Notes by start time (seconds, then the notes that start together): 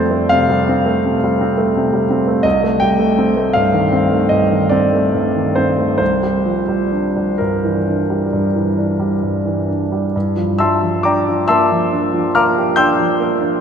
Already playing: F2 G3 A3 C4 C5 D5
0.11 A3
0.29 C3 F5
0.50 G3
0.69 C4
0.86 A3
1.06 C3
1.24 G3
1.41 C4
1.58 A3
1.76 C3
1.93 G3
2.10 C4
2.28 A3
2.43 C2 D#5
2.64 A3
2.80 G3 G5
2.99 A3
3.19 C4
3.37 A3
3.53 G2 F5
3.73 D#3
3.93 C4
4.12 A3
4.29 G2 D#5
4.51 D#3
4.69 C4 D5
4.93 A3
5.14 G2
5.36 D#3
5.55 C4 C5
5.78 A3
5.98 C2 C5
6.23 G3
6.46 F3
6.68 G3
6.92 D4
7.16 G3
7.38 G2 A#4
7.64 E3
7.88 D4
8.10 G3
8.33 G2
8.56 E3
8.78 D4
9.00 G3
9.23 G2
9.45 E3
9.69 D4
9.92 G3
10.16 G2
10.37 F3
10.59 G3 E5 A5 C6 E6
10.83 F3
11.03 D4 D5 G5 A#5 D6
11.28 F3
11.48 A#3 E5 A5 C6 E6
11.72 F3
11.93 D4
12.14 F3
12.35 A#3 F5 A#5 D6 F6
12.58 G4
12.76 D4 G5 C6 E6 G6
12.99 F3
13.20 A#3
13.40 D4